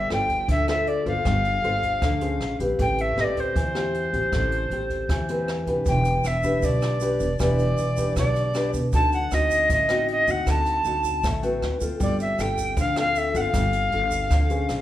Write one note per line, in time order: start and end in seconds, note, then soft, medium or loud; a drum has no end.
0.00 0.47 G3 medium
0.00 0.11 E5 medium
0.10 0.46 G1 medium
0.10 0.65 F4 medium
0.10 0.65 A4 medium
0.10 0.65 C5 medium
0.10 0.47 G5 medium
0.10 cross-stick medium
0.10 closed hi-hat soft
0.29 kick soft
0.29 closed hi-hat soft
0.48 1.02 D2 loud
0.48 1.24 D3 medium
0.48 0.67 E5 medium
0.48 kick medium
0.48 closed hi-hat medium
0.68 1.03 F4 medium
0.68 1.04 A4 medium
0.68 1.04 C5 medium
0.68 0.89 E5 medium
0.68 cross-stick medium
0.68 closed hi-hat soft
0.87 1.06 D5 medium
0.87 closed hi-hat soft
1.06 1.24 G1 medium
1.06 1.61 F4 medium
1.06 1.61 A4 medium
1.06 1.61 C5 medium
1.06 2.56 F5 loud
1.06 kick soft
1.06 closed hi-hat soft
1.25 1.61 G1 loud
1.25 2.00 G3 medium
1.25 kick medium
1.25 cross-stick medium
1.25 closed hi-hat soft
1.45 closed hi-hat soft
1.63 1.99 G1 medium
1.63 2.02 F4 medium
1.63 2.02 A4 medium
1.63 2.02 C5 medium
1.63 closed hi-hat soft
1.83 kick soft
1.83 closed hi-hat soft
2.02 2.38 D2 loud
2.02 2.38 D3 medium
2.02 kick medium
2.02 cross-stick medium
2.02 closed hi-hat medium
2.21 2.56 C#4 medium
2.21 2.57 G#4 medium
2.21 2.57 C5 medium
2.21 closed hi-hat soft
2.40 2.58 A#1 medium
2.40 cross-stick medium
2.40 closed hi-hat soft
2.60 2.78 A#1 medium
2.60 3.14 C4 medium
2.60 3.14 G4 medium
2.60 3.15 B4 medium
2.60 kick soft
2.60 closed hi-hat soft
2.79 3.15 A1 loud
2.79 3.54 A3 medium
2.79 3.02 G5 loud
2.79 kick medium
2.79 closed hi-hat medium
2.98 3.22 E5 medium
2.98 closed hi-hat soft
3.17 3.53 A1 medium
3.17 3.55 C4 medium
3.17 3.56 G4 medium
3.17 3.56 B4 soft
3.17 3.25 D#5 medium
3.17 cross-stick soft
3.17 closed hi-hat soft
3.24 3.41 D5 medium
3.36 5.49 C5 medium
3.36 kick soft
3.36 closed hi-hat soft
3.55 4.09 E2 medium
3.55 4.30 E3 medium
3.55 kick medium
3.55 closed hi-hat medium
3.74 4.10 C4 medium
3.74 4.10 G4 medium
3.74 cross-stick medium
3.74 closed hi-hat soft
3.94 closed hi-hat soft
4.13 4.31 A1 medium
4.13 4.68 C4 medium
4.13 4.68 G4 medium
4.13 kick soft
4.13 closed hi-hat soft
4.32 4.68 A1 loud
4.32 5.08 A3 medium
4.32 kick medium
4.32 cross-stick medium
4.32 closed hi-hat medium
4.52 closed hi-hat soft
4.70 5.06 A1 medium
4.70 5.26 C4 medium
4.70 5.26 G4 soft
4.70 closed hi-hat soft
4.90 kick soft
4.90 closed hi-hat soft
5.09 5.63 E2 medium
5.09 5.85 E3 medium
5.09 kick medium
5.09 cross-stick medium
5.09 closed hi-hat medium
5.28 5.64 C4 medium
5.28 5.64 G4 medium
5.28 5.65 B4 medium
5.28 closed hi-hat soft
5.48 cross-stick medium
5.48 closed hi-hat soft
5.67 5.85 F1 medium
5.67 6.22 D4 soft
5.67 6.22 G4 medium
5.67 6.22 B4 medium
5.67 kick soft
5.67 closed hi-hat soft
5.86 6.22 E1 loud
5.86 6.61 E3 medium
5.86 6.28 G5 medium
5.86 kick medium
5.86 closed hi-hat medium
5.86 shaker medium
6.05 closed hi-hat soft
6.05 shaker soft
6.24 6.60 E1 medium
6.24 6.66 E5 medium
6.24 cross-stick soft
6.24 closed hi-hat soft
6.24 shaker medium
6.43 6.98 D4 medium
6.43 6.98 G4 medium
6.43 6.99 B4 medium
6.43 kick soft
6.43 closed hi-hat soft
6.43 shaker medium
6.62 7.16 B1 loud
6.62 7.38 B2 medium
6.62 7.40 D5 medium
6.62 kick medium
6.62 closed hi-hat medium
6.62 shaker medium
6.81 cross-stick medium
6.81 closed hi-hat soft
6.81 shaker soft
7.00 7.26 D4 soft
7.00 7.26 G4 soft
7.00 7.26 B4 medium
7.00 closed hi-hat soft
7.00 shaker medium
7.20 7.38 E1 loud
7.20 kick soft
7.20 closed hi-hat soft
7.20 shaker medium
7.39 7.75 E1 loud
7.39 8.14 E3 medium
7.39 7.78 D4 medium
7.39 7.78 G4 medium
7.39 7.78 B4 medium
7.39 8.13 D5 loud
7.39 kick medium
7.39 cross-stick medium
7.39 closed hi-hat medium
7.39 shaker medium
7.58 closed hi-hat soft
7.58 shaker soft
7.77 8.14 E1 medium
7.77 closed hi-hat soft
7.77 shaker medium
7.97 8.52 D4 medium
7.97 8.52 G4 medium
7.97 8.52 B4 medium
7.97 kick soft
7.97 closed hi-hat soft
7.97 shaker medium
8.16 8.70 B1 medium
8.16 8.91 B2 medium
8.16 8.71 D5 medium
8.16 kick medium
8.16 cross-stick medium
8.16 closed hi-hat medium
8.16 shaker medium
8.35 closed hi-hat soft
8.35 shaker soft
8.54 8.79 D4 soft
8.54 8.80 G4 soft
8.54 8.80 B4 soft
8.54 cross-stick medium
8.54 closed hi-hat soft
8.54 shaker medium
8.74 8.92 E1 loud
8.74 kick soft
8.74 closed hi-hat soft
8.74 shaker medium
8.92 9.29 D2 loud
8.92 9.68 D3 medium
8.92 9.18 C4 medium
8.92 9.18 D#4 medium
8.92 9.18 F#4 medium
8.92 9.11 A5 loud
8.92 kick medium
8.92 closed hi-hat soft
8.92 shaker medium
9.12 9.35 F#5 medium
9.12 closed hi-hat soft
9.12 shaker soft
9.31 9.67 D2 medium
9.31 9.70 C4 medium
9.31 9.70 D#4 medium
9.31 9.70 F#4 medium
9.31 9.71 D#5 medium
9.31 cross-stick medium
9.31 closed hi-hat soft
9.31 shaker medium
9.50 kick soft
9.50 closed hi-hat soft
9.50 shaker medium
9.70 10.23 A1 loud
9.70 10.45 A3 medium
9.70 10.07 D#5 medium
9.70 kick medium
9.70 closed hi-hat medium
9.70 shaker medium
9.89 10.25 C4 medium
9.89 10.25 D#4 medium
9.89 10.25 F#4 medium
9.89 cross-stick medium
9.89 closed hi-hat medium
9.89 shaker soft
10.08 10.32 D#5 medium
10.08 closed hi-hat soft
10.27 10.45 D2 medium
10.27 10.82 C4 medium
10.27 10.82 D#4 medium
10.27 10.82 F#4 medium
10.27 10.51 F#5 medium
10.27 kick soft
10.27 closed hi-hat soft
10.27 shaker medium
10.47 10.82 D2 medium
10.47 11.22 D3 medium
10.47 11.25 A5 medium
10.47 kick soft
10.47 cross-stick medium
10.47 closed hi-hat medium
10.47 shaker medium
10.66 closed hi-hat soft
10.66 shaker soft
10.85 11.21 D2 medium
10.85 11.23 C4 medium
10.85 11.23 D#4 medium
10.85 11.24 F#4 medium
10.85 closed hi-hat soft
10.85 shaker medium
11.04 kick soft
11.04 closed hi-hat soft
11.04 shaker medium
11.23 11.59 A1 medium
11.23 11.60 A3 medium
11.23 kick medium
11.23 cross-stick medium
11.23 closed hi-hat medium
11.23 shaker medium
11.42 11.78 C4 medium
11.42 11.78 F#4 medium
11.42 11.78 B4 medium
11.42 closed hi-hat soft
11.42 shaker soft
11.62 11.80 D2 medium
11.62 cross-stick medium
11.62 closed hi-hat soft
11.81 11.99 D2 medium
11.81 12.36 C4 medium
11.81 12.36 F4 medium
11.81 12.36 A4 medium
11.81 kick soft
11.81 closed hi-hat soft
11.81 shaker medium
12.00 12.36 G1 loud
12.00 12.75 G3 medium
12.00 12.19 D5 medium
12.00 kick medium
12.00 closed hi-hat medium
12.00 shaker medium
12.20 12.42 E5 medium
12.20 closed hi-hat soft
12.20 shaker soft
12.39 12.74 G1 medium
12.39 12.93 C4 soft
12.39 12.94 F4 medium
12.39 12.94 A4 medium
12.39 12.78 G5 loud
12.39 cross-stick soft
12.39 closed hi-hat soft
12.39 shaker medium
12.58 kick soft
12.58 closed hi-hat soft
12.58 shaker medium
12.77 13.31 D2 medium
12.77 13.52 D3 medium
12.77 12.96 F5 loud
12.77 kick medium
12.77 closed hi-hat medium
12.77 shaker medium
12.96 13.31 C4 medium
12.96 13.32 F4 medium
12.96 13.32 A4 medium
12.96 13.18 F5 loud
12.96 cross-stick medium
12.96 closed hi-hat soft
12.96 shaker soft
13.15 13.38 E5 medium
13.15 closed hi-hat soft
13.15 shaker medium
13.34 13.52 G1 loud
13.34 13.89 C4 medium
13.34 13.89 F4 medium
13.34 13.89 A4 medium
13.34 13.41 F#5 medium
13.34 kick soft
13.34 closed hi-hat soft
13.34 shaker medium
13.40 14.81 F5 loud
13.54 13.89 G1 loud
13.54 14.29 G3 medium
13.54 kick medium
13.54 cross-stick medium
13.54 closed hi-hat medium
13.54 shaker medium
13.73 closed hi-hat soft
13.73 shaker soft
13.92 14.28 G1 medium
13.92 14.47 C4 medium
13.92 14.47 F4 soft
13.92 14.47 A4 medium
13.92 closed hi-hat soft
14.11 kick soft
14.11 closed hi-hat soft
14.11 shaker medium
14.30 14.66 D2 loud
14.30 14.67 D3 medium
14.30 kick medium
14.30 cross-stick medium
14.30 closed hi-hat medium
14.30 shaker medium
14.50 14.81 C#4 medium
14.50 14.81 G#4 medium
14.50 14.81 C5 medium
14.50 closed hi-hat soft
14.50 shaker soft
14.69 14.81 A#1 medium
14.69 cross-stick medium
14.69 closed hi-hat soft
14.69 shaker medium